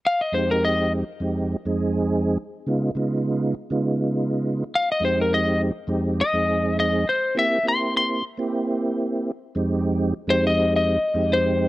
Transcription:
X:1
M:4/4
L:1/16
Q:"Swing 16ths" 1/4=103
K:Fm
V:1 name="Electric slide guitar"
f e c B e2 z8 z2 | z16 | f e c B e2 z4 e4 e2 | c2 =e2 c'2 c'2 z8 |
z6 c e2 e4 c3 |]
V:2 name="Tonewheel organ"
z2 [F,,A,CEG]4- [F,,A,CEG] z [F,,A,CEG]2 z [F,,A,CEA]4- [F,,A,CEA] | z2 [D,A,_CEF]2 [D,A,CEF]4 z [D,A,CEF]6 z | z2 [F,,A,CEG]4- [F,,A,CEG] z [F,,A,CEG]2 z [F,,A,CEA]4- [F,,A,CEA] | z2 [B,C=EG]2 [B,CEG]4 z [B,CEG]6 z |
z [F,,A,CEG]4 z [F,,A,CEG]4- [F,,A,CEG] z [F,,A,CEG]4 |]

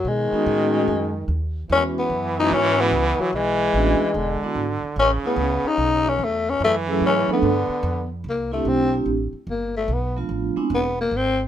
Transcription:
X:1
M:4/4
L:1/8
Q:"Swing" 1/4=146
K:E
V:1 name="Vibraphone"
z [G,B,CDF]2 [G,A,CDF] z4 | [G,B,CEF] z2 [G,B,CEF]3 z2 | z2 [A,B,C=DF] z2 [G,B,DEF] z2 | z [A,B,CEG] z6 |
z [F,A,CEG]2 [=F,A,B,=DA] z4 | [K:C] z [A,CDEG]2 [A,CDEG] z4 | z [F,A,B,DF]2 [_A,B,CDE] z4 |]
V:2 name="Tenor saxophone"
G,6 z2 | C B,2 D C B,2 F, | G,6 z2 | C B,2 D2 C A, C |
A, A, C B,4 z | [K:C] _B, A, C z3 B, A, | B, z3 B, _B, C z |]
V:3 name="Trombone" clef=bass
D,6- D, z | E,8 | E,4 =D,4 | C,6- C, z |
E,4 =D,3 z | [K:C] z8 | z8 |]
V:4 name="Upright bass" clef=bass
B,, z A,,2 F,,2 D,,2 | E,,2 F,,2 G,,2 C,, z | B,,,2 A,,, z E,,, z G,,, z | A,,, z C,, z B,,,2 E,,2 |
F,,2 G,, z =G,, z =F,,2 | [K:C] C,,2 B,,,2 A,,, z G,,,2 | B,,,2 A,,, z E,,,2 ^G,,,2 |]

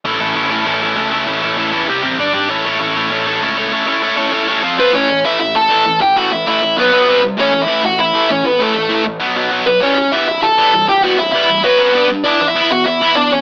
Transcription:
X:1
M:4/4
L:1/16
Q:1/4=197
K:Amix
V:1 name="Lead electric guitar"
z16 | z16 | z16 | z12 z2 [B,B]2 |
[Cc]4 [Ee]2 [Ee]2 [Aa]6 [Gg]2 | [Ff]2 [Ee]2 [Ee]4 [B,B]6 z2 | [Cc]3 [Ee]3 [Ff]2 [Ee]4 [Cc]2 [B,B]2 | [A,A]6 z8 [B,B]2 |
[Cc]4 [Ee]2 [Ee]2 [Aa]6 [Gg]2 | [Ff]2 [Ee]2 [Ee]4 [B,B]6 z2 | [Dd]3 [Ee]3 [Ff]2 [Ee]4 [Dd]2 [Cc]2 |]
V:2 name="Distorted electric guitar"
[A,,E,A,CEA]2 [A,,E,A,CEA]2 [A,,E,A,CEA]2 [A,,E,A,CEA]2 [A,,E,A,CEA]2 [A,,E,A,CEA]2 [A,,E,A,CEA]2 [A,,E,A,CEA]2 | [A,,E,A,CEA]2 [A,,E,A,CEA]2 [A,,E,A,CEA]2 [A,,E,A,CEA]2 [=C,G,=CG]2 [C,G,CG]2 [G,DGd]2 [G,DGd]2 | [A,CEAc]2 [A,CEAc]2 [A,CEAc]2 [A,CEAc]2 [A,CEAc]2 [A,CEAc]2 [A,CEAc]2 [A,CEAc]2 | [A,CEAc]2 [A,CEAc]2 [A,CEAc]2 [A,CEAc]2 [A,CEAc]2 [A,CEAc]2 [=F,=C=F=c]2 [F,CFc]2 |
[A,,E,A,]2 [A,,E,]2 [A,,E,A,]2 [A,,E,]2 [A,,E,]2 [A,,E,A,]2 [A,,E,]2 [A,,E,]2 | [A,,E,A,]2 [A,,E,]2 [A,,E,A,]2 [A,,E,]2 [B,,F,B,]2 [B,,F,B,]2 [=C,G,=C]2 [C,G,]2 | [A,,E,A,]2 [A,,E,]2 [A,,E,A,]2 [A,,E,]2 [A,,E,]2 [A,,E,A,]2 [A,,E,]2 [A,,E,]2 | [A,,E,A,]2 [A,,E,]2 [A,,E,A,]2 [A,,E,]2 [B,,F,B,]2 [B,,F,B,]2 [B,,F,B,]2 [B,,F,]2 |
[E,G,B,]2 [E,G,]2 [E,G,B,]2 [E,G,]2 [E,G,]2 [E,G,B,]2 [E,G,]2 [E,G,]2 | [E,G,B,]2 [E,G,]2 [E,G,B,]2 [E,G,]2 [F,CF]2 [F,CF]2 [G,DG]2 [G,D]2 | [E,B,E]2 [E,B,]2 [E,B,E]2 [E,B,]2 [E,B,]2 [E,B,E]2 [E,B,]2 [E,B,]2 |]
V:3 name="Picked electric bass" clef=bass
A,,,2 A,,,2 A,,,4 A,,,4 C,,4 | A,,,2 A,,,2 A,,,2 E,,2 =C,,2 A,,,2 G,,,2 ^G,,,2 | A,,,2 A,,,2 A,,,4 A,,,4 C,,4 | z16 |
z16 | z16 | z16 | z16 |
z16 | z16 | z16 |]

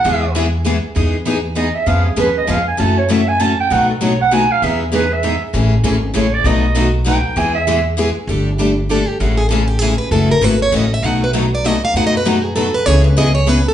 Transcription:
X:1
M:3/4
L:1/8
Q:"Swing" 1/4=196
K:E
V:1 name="Clarinet"
f2 z4 | z4 d e | ^e G B d e g | a c e g a =g |
f A c f g =f | e G B e2 z | z4 c =d | d3 z =g2 |
g e2 z3 | z6 | z6 | z6 |
z6 | z6 | z6 |]
V:2 name="Steel-string acoustic guitar"
z6 | z6 | z6 | z6 |
z6 | z6 | z6 | z6 |
z6 | z4 A =G | F G A =G ^G B | A ^A B c d e |
f B z =d ^d =f | (3f d B F G A B | c B d c B A |]
V:3 name="Steel-string acoustic guitar"
[E,G,B,EG] z [E,G,B,EG] z [E,G,B,EG] z | [E,G,B,DG] z [E,G,B,DG] z [E,G,B,DG] z | [^E,G,C^EB] z [E,G,CEB] z [E,G,CEB] z | [F,CEA] z [F,CEA] z [F,CEA] z |
[B,,F,A,DFB] z [B,,F,A,DFB] z [B,,F,A,DFB] z | [E,G,B,DG] z [E,G,B,DG] z [E,G,B,DG] z | [E,G,CEA] z [E,G,CEA] z [E,G,CEA] z | [B,,F,A,DFB] z [B,,F,A,DFB] z [B,,F,A,DFB] z |
[E,G,B,EG] z [E,G,B,EG] z [E,G,B,EG] z | [=G,=D=GA] z [G,DGA] z [G,DGA] z | [E,G,CEA] z [E,G,CEA] z [E,G,CEA] z | [F,CEA] z [F,CEA] z [F,CEA] z |
[B,,F,A,DFB] z [B,,F,A,DFB] z [B,,F,A,DFB] z | [B,,F,A,DFB] z [B,,F,A,DFB] z [B,,F,A,DFB] z | [C,G,B,EG] z [C,G,B,EG] z [C,G,B,EG] z |]
V:4 name="Steel-string acoustic guitar"
[E,G,B,EG] z [E,G,B,EG] z [E,G,B,EG] z | [E,B,DG] z [E,B,DG] z [E,B,DG] z | [^E,B,CG] z [E,B,CG] z [E,B,CG] z | [C,E,A,CF] z [C,E,A,CF] z [C,E,A,CF] z |
[B,,F,A,DF] z [B,,F,A,DF] z [B,,F,A,DF] z | [E,B,DG] z [E,B,DG] z [E,B,DG] z | [C,E,A,CG] z [C,E,A,CG] z [C,E,A,CG] z | [B,,F,A,DF] z [B,,F,A,DF] z [B,,F,A,DF] z |
[E,G,B,EG] z [E,G,B,EG] z [E,G,B,EG] z | [=G,A,=DA] z [G,A,DA] z [G,A,DA] z | [C,E,A,CG] z [C,E,A,CG] z [C,E,A,CG] z | [C,E,A,CF] z [C,E,A,CF] z [C,E,A,CF] z |
[B,,F,A,DF] z [B,,F,A,DF] z [B,,F,A,DF] z | [B,,F,A,DF] z [B,,F,A,DF] z [B,,F,A,DF] z | [C,E,B,CG] z [C,E,B,CG] z [C,E,B,CG] z |]
V:5 name="Upright bass" clef=bass
E,,6 | E,,6 | ^E,,2 D,,2 E,,2 | F,,6 |
B,,,6 | E,,6 | A,,,2 G,,,2 A,,,2 | B,,,6 |
E,,6 | =G,,,6 | A,,,6 | F,,,2 G,,,2 A,,,2 |
B,,,6 | F,,6 | C,,6 |]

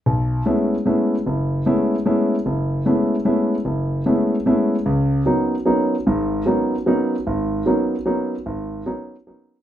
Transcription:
X:1
M:3/4
L:1/8
Q:"Swing" 1/4=150
K:C#phr
V:1 name="Grand piano"
B,,,2 [G,A,B,CE] z [G,A,B,CE] z | F,,,2 [G,A,B,CE] z [G,A,B,CE] z | F,,,2 [G,A,B,CE] z [G,A,B,CE] z | F,,,2 [G,A,B,CE] z [G,A,B,CE] z |
[C,,C,]2 [F,^A,B,C^D] z [F,A,B,CD] z | [G,,,G,,]2 [F,^A,B,C^D] z [F,A,B,CD] z | G,,,2 [F,^A,B,C^D] z [F,A,B,CD] z | G,,,2 [F,^A,B,C^D] z [F,A,B,CD] z |]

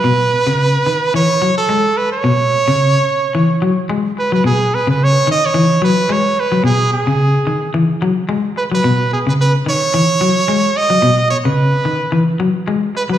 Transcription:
X:1
M:4/4
L:1/16
Q:"Swing 16ths" 1/4=109
K:C#m
V:1 name="Trumpet"
B8 c3 A3 B c- | c12 z2 B B | G2 B B c2 d c3 B2 c2 B2 | G2 G6 z6 B B- |
B2 G B B2 c8 d2- | d2 c B6 z4 z B B |]
V:2 name="Clean electric guitar" clef=bass
B,,2 z C,2 z D,2 E,2 F,2 G,2 z2 | B,,2 z C,2 z3 E,2 F,2 G,2 z F, | B,,2 z C,2 z D,2 E,2 F,2 G,2 z F, | B,,2 z C,2 z D,2 E,2 F,2 G,2 z F, |
B,,2 z C,2 z D,2 E,2 F,2 G,2 z F, | B,,2 z C,2 z D,2 E,2 F,2 G,2 z F, |]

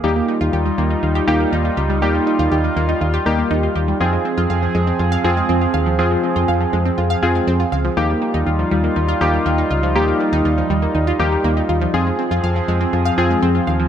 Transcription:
X:1
M:4/4
L:1/16
Q:1/4=121
K:Ebmix
V:1 name="Synth keys"
[B,EG]4 z6 [B,EG]4 z2 | [B,EG]4 z6 [B,EG]4 z2 | [CFA]4 z6 [CFA]4 z2 | [CFA]4 z6 [CFA]4 z2 |
[B,EG]4 z6 [B,EG]4 z2 | [B,EG]4 z6 [B,EG]4 z2 | [CFA]4 z6 [CFA]4 z2 |]
V:2 name="Analog synth pad"
[G,EF]16- | [G,EF]16 | [F,CA]16- | [F,CA]16 |
[G,EF]16- | [G,EF]16 | [F,CA]16 |]
V:3 name="Synth arpeggio sound"
G, B, E F G G, B, E F G G, B, E F G G, | G, B, E F G G, B, E F G G, B, E F G G, | F, A, C F f F, A, C F f F, A, C F f F, | F, A, C F f F, A, C F f F, A, C F f F, |
F, G, B, E F F, G, B, E F F, G, B, E F F, | F, G, B, E F F, G, B, E F F, G, B, E F F, | F, A, C F f F, A, C F f F, A, C F f F, |]
V:4 name="FM bass" clef=bass
E,,2 z E,, E,,2 E,,2 E,,2 E,,2 E,,2 D,,2 | E,,2 z E,, E,,2 E,,2 E,,2 E,,2 E,,2 E,,2 | F,,2 z F,, F,,2 F,,2 F,,2 F,,2 F,,2 E,,2 | F,,2 z F,, F,,2 F,,2 F,,2 F,,2 F,,2 D,,2 |
E,,2 z E,, E,,2 E,,2 E,,2 E,,2 E,,2 D,,2 | E,,2 z E,, E,,2 E,,2 E,,2 E,,2 E,,2 E,,2 | F,,2 z F,, F,,2 F,,2 F,,2 F,,2 F,,2 E,,2 |]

